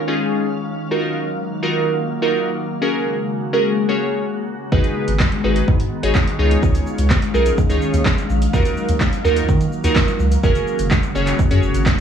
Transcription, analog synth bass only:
4.72 G#1
5.08 G#1
5.44 G#1
5.68 G#2
6.03 G#1
6.39 C#2
6.63 C#2
6.98 C#2
7.34 B1
7.70 C#2
7.94 D#2
8.29 A#1
8.53 D#2
8.89 D#2
9.25 D#2
9.49 D#3
9.84 D#2
10.20 C#2
10.44 F#1
10.79 F#1
11.15 F#1
11.51 F#2
11.63 F#1
11.75 G#1

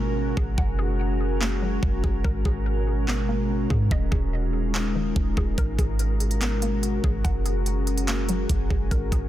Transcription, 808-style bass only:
Already playing: G#1
0.37 G#1
0.58 F#1
1.83 F#1
2.04 F#1
2.25 G#1
2.45 G#1
3.70 G#2
3.91 D#1
4.12 D#1
5.16 D#1
5.37 D#1
5.58 G#1
5.79 G#1
7.04 G#1
7.25 F#1
8.50 F#1
8.70 F#1
8.91 G#1
9.12 G#1

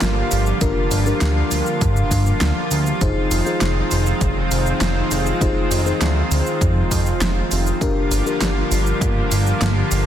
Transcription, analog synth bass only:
0.01 G1
0.32 G1
0.61 G1
0.91 G1
1.21 D2
1.52 D2
1.81 G2
2.11 G2
2.41 D2
2.71 D2
3.01 F1
3.31 F1
3.61 F1
3.91 F1
4.21 F1
4.51 F1
4.81 F1
5.11 F1
5.41 F1
5.71 F1
6.01 D2
6.31 D2
6.61 F2
6.91 F2
7.21 F1
7.51 F1
7.81 G1
8.11 G1
8.41 G1
8.71 G1
9.01 G1
9.31 G1
9.61 G1
9.91 G1

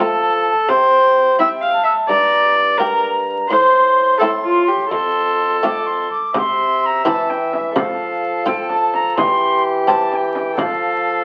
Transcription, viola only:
0.00 A4
0.69 C5
1.39 E5
1.61 F5
1.84 E5
2.09 D5
2.78 A#4
3.49 C5
4.19 A4
4.44 F4
4.68 G4
4.90 A4
6.34 E5
7.75 A4
9.17 G4
10.57 A4

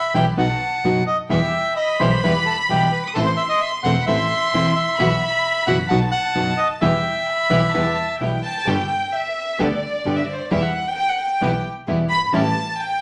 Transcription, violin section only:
Already playing: B5
0.38 A5
1.30 G5
1.77 B5
3.08 D#6
3.15 C6
4.00 B5
4.07 C6
4.98 B5
5.89 A5
6.82 G5
7.28 B5
7.75 A5
8.20 G5
8.44 A5
8.68 G5
9.16 E5
9.61 D5
10.15 E5
10.24 D5
10.33 C5
10.42 D5
10.52 E5
10.63 F#5
10.87 G5
10.97 G5
11.09 F#5
11.20 G5
12.10 B5
12.26 B5
12.33 A5
12.80 G5

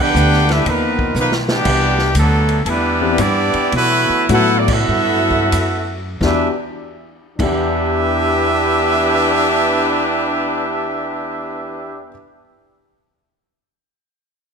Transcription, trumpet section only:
0.00 D4 B4 F#5 G5
0.52 D4 G4 B4 E5
0.69 D#4 A#4 B4
1.20 A#3 D#4 B4
1.50 B3 D4 G4
2.18 F#3 B3 D4 A4
2.65 G3 E4 A4 B4
2.69 D4
3.20 B3 E4 G4 D5
3.76 A3 E4 F#4 B4
4.33 E4 A4 B4 F#5
4.59 D5
4.73 B3 F#4 A4 E5
6.23 D4 G4 B4 E5
7.41 D4 G4 B4 E5

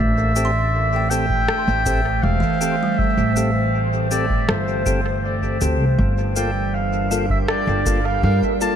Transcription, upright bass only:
0.00 A1
1.67 A1
2.23 E1
3.18 A1
4.49 G1
5.61 D2
5.80 C2
5.98 G1
7.67 G1
8.23 G2

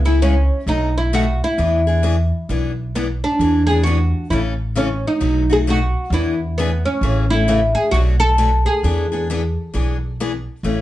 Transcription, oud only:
0.06 E4
0.22 C#4
0.69 D#4
0.98 E4
1.14 F#4
1.44 E4
2.95 B3
3.24 D4
3.67 G#4
3.83 F#4
4.30 E4
4.77 C#4
5.07 D#4
5.53 G#4
5.70 F#4
6.14 E4
6.58 B3
6.85 C#4
7.30 E4
7.75 G#4
7.91 F#4
8.20 A4
8.66 G#4

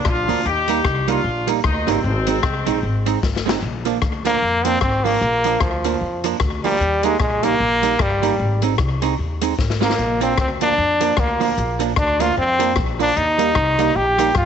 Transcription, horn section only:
0.07 D4 F4
0.47 D#4 G4
1.09 D4 F4
1.66 A#3 D#4
1.89 G#3 C4

